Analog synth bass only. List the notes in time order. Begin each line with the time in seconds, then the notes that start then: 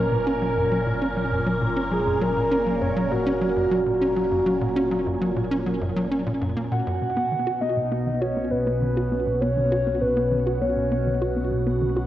0.12 A#2
0.27 C#4
0.42 F#3
0.57 F#2
0.72 F#3
0.87 A#2
1.02 C#4
1.17 F#3
1.32 F#2
1.46 F#3
1.62 A#2
1.77 C#4
1.91 F#3
2.06 F#2
2.21 F#3
2.36 A#2
2.51 C#4
2.66 F#3
2.81 F#2
2.96 F#3
3.11 A#2
3.26 C#4
3.41 F#3
3.56 F#2
3.71 F#3
3.86 A#2
4.01 C#4
4.16 F#3
4.31 F#2
4.46 F#3
4.61 A#2
4.76 C#4
4.92 F#3
5.07 F#2
5.22 F#3
5.36 A#2
5.51 C#4
5.66 F#3
5.81 F#2
5.96 F#3
6.11 C#4
6.26 A#2
6.41 F#2
6.56 A#3
6.71 A#2
6.87 F#2
7.01 B2
7.16 B3
7.32 D#3
7.47 F#4
7.62 B3
7.77 B2
7.91 B3
8.07 D#3
8.21 F#4
8.37 B3
8.52 B2
8.67 B3
8.82 D#3
8.97 F#4
9.12 B3
9.26 B2
9.42 B3
9.57 D#3
9.72 F#4
9.87 B3
10.02 B2
10.17 B3
10.32 D#3
10.47 F#4
10.62 B3
10.77 B2
10.92 B3
11.07 D#3
11.22 F#4
11.37 B3
11.51 B2
11.67 B3
11.82 D#3
11.96 F#4